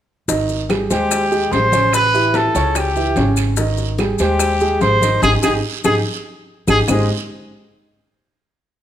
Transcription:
0.28 G#1 D#3 D#4 D#5, high bongo, high conga, long guiro, maracas
0.49 high bongo, high conga, maracas
0.69 G3 G4 G#4, high bongo, high conga, short guiro, claves, maracas
0.90 D#2 G#3 G4 C5, short guiro, maracas
1.11 high bongo, high conga, long guiro, claves, maracas
1.31 G#3 G4 G#4, high bongo, high conga, maracas
1.52 A1 C5, high bongo, low bongo, high conga, short guiro, maracas
1.72 C#3 C#4 C#5, high bongo, high conga, short guiro, maracas
1.93 B4, high bongo, high conga, long guiro, claves, maracas
2.14 E3 E4 G4, high bongo, high conga, maracas
2.34 A4, high bongo, high conga, short guiro, maracas
2.54 C#2 C#3 C#4 C#5, high conga, short guiro, maracas
2.75 G4, high bongo, high conga, long guiro, claves, maracas
2.95 E3 E4 G4, high bongo, high conga, maracas
3.16 G#1 C#3 C#4 C#5, high bongo, low bongo, high conga, short guiro, maracas
3.36 high bongo, short guiro, claves, maracas
3.57 D#3 D#4 D#5, high bongo, high conga, long guiro, maracas
3.78 high bongo, high conga, maracas
3.98 G3 G4 G#4, high bongo, high conga, short guiro, claves, maracas
4.19 D#2 G#3 G4 C5, short guiro, maracas
4.39 high bongo, high conga, long guiro, claves, maracas
4.60 G#3 G4 G#4, high bongo, high conga, maracas
4.81 G#1 C5, high bongo, low bongo, high conga, short guiro, maracas
5.01 D#3 D#4 D#5, high bongo, high conga, short guiro, maracas
5.22 G#1 D#4 G4 G#4, low bongo, high conga, long guiro, claves, maracas
5.43 G#1 D#4 G4 G#4, low bongo, high conga, long guiro, claves, maracas
5.84 G#1 D#4 G4 G#4, low bongo, high conga, long guiro, claves, maracas
6.67 G#1 D#4 G4 G#4, low bongo, high conga, long guiro, claves, maracas
6.88 G#1 G#3 D#4 G4 G#4 C5 D#5, low bongo, low conga, long guiro, claves, maracas

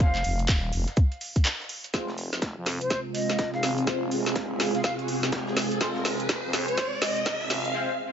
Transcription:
0.00 F1 G#3 C4 F4 C5 F5, kick, closed hi-hat, shaker
0.15 clap
0.24 F1, open hi-hat, shaker
0.39 closed hi-hat
0.48 D#1, kick, clap, open hi-hat
0.73 F1, open hi-hat, shaker
0.88 snare, closed hi-hat
0.97 kick, closed hi-hat, shaker
1.12 closed hi-hat
1.21 open hi-hat, shaker
1.36 kick, closed hi-hat
1.45 snare, clap, closed hi-hat, shaker
1.60 snare
1.69 open hi-hat, shaker
1.84 closed hi-hat
1.94 F1 C3 G#3 C4 F4 C5, kick, snare, closed hi-hat, riser, shaker
2.08 snare
2.18 open hi-hat, shaker
2.25 G#4
2.30 F1 G#5, snare, closed hi-hat
2.42 kick, snare, closed hi-hat, shaker
2.50 F5
2.57 F2
2.66 snare, open hi-hat, shaker
2.81 C5, closed hi-hat
2.90 kick, snare, closed hi-hat, shaker
3.15 D#5, open hi-hat
3.30 snare, closed hi-hat
3.39 kick, snare, closed hi-hat, shaker
3.54 G#1 F5, snare
3.63 snare, open hi-hat, shaker
3.78 closed hi-hat
3.87 F1 G#3 C4 F4 C5, kick, snare, closed hi-hat, shaker
4.11 F1, open hi-hat, shaker
4.26 snare, closed hi-hat
4.36 D#1, kick, snare, closed hi-hat, shaker
4.60 F1, snare, open hi-hat, shaker
4.75 F5, snare, closed hi-hat
4.84 F5, kick, snare, closed hi-hat, shaker
4.99 closed hi-hat
5.08 open hi-hat, shaker
5.23 F1, snare, closed hi-hat
5.32 kick, snare, closed hi-hat, shaker
5.47 snare
5.57 snare, open hi-hat, shaker
5.71 F1, closed hi-hat
5.81 F1 G#3 C4 F4 C5, kick, snare, closed hi-hat, shaker
5.96 snare
6.05 snare, open hi-hat, shaker
6.20 F1, closed hi-hat
6.29 kick, snare, closed hi-hat, shaker
6.44 F2
6.53 snare, open hi-hat, shaker
6.68 C5, closed hi-hat
6.78 kick, snare, closed hi-hat, shaker
7.02 D#5, snare, open hi-hat
7.17 closed hi-hat
7.26 kick, snare, closed hi-hat, shaker
7.41 G#1, snare
7.50 snare, open hi-hat, shaker
7.65 closed hi-hat
7.74 G#3 C4 F4 C5

